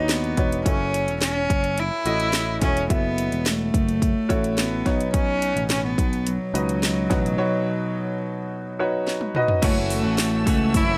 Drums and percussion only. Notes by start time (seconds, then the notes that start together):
0.09 snare, closed hi-hat
0.24 closed hi-hat
0.37 kick, closed hi-hat
0.52 closed hi-hat
0.66 kick, closed hi-hat
0.94 closed hi-hat
1.08 closed hi-hat
1.21 snare, closed hi-hat
1.50 kick, closed hi-hat
1.64 closed hi-hat
1.78 closed hi-hat
2.06 closed hi-hat
2.20 closed hi-hat
2.33 snare, closed hi-hat
2.62 kick, snare, closed hi-hat
2.77 closed hi-hat
2.90 kick, closed hi-hat
3.18 closed hi-hat
3.32 closed hi-hat
3.46 snare, closed hi-hat
3.74 kick, closed hi-hat
3.89 closed hi-hat
4.02 kick, closed hi-hat
4.30 kick, closed hi-hat
4.44 closed hi-hat
4.58 snare, closed hi-hat
4.86 kick, snare, closed hi-hat
5.00 closed hi-hat
5.14 kick, closed hi-hat
5.42 closed hi-hat
5.57 closed hi-hat
5.70 snare, closed hi-hat
5.98 kick, closed hi-hat
6.13 closed hi-hat
6.27 closed hi-hat
6.55 closed hi-hat
6.69 closed hi-hat
6.83 snare, closed hi-hat
7.11 kick, snare, closed hi-hat
7.26 closed hi-hat
9.07 snare
9.21 high tom
9.35 mid tom
9.48 floor tom
9.63 kick, open hi-hat, crash
9.90 open hi-hat
10.18 snare, open hi-hat
10.47 kick, open hi-hat
10.74 kick, open hi-hat